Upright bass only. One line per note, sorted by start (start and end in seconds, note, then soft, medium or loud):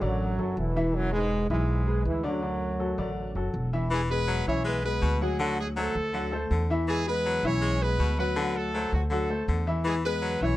0.01 0.36 A1 medium
0.38 0.56 F#1 medium
0.57 1.44 E1 medium
1.50 2.02 B1 medium
2.05 2.92 D2 medium
2.98 3.33 A1 medium
3.35 3.53 F#1 medium
3.54 4.41 E1 medium
4.46 4.98 B1 medium
5.02 5.89 D2 loud
5.95 6.47 D2 medium
6.51 7.38 E2 medium
7.43 7.95 B1 loud
7.99 8.86 D2 medium
8.92 9.44 D2 medium
9.48 10.35 E2 loud
10.41 10.57 B1 medium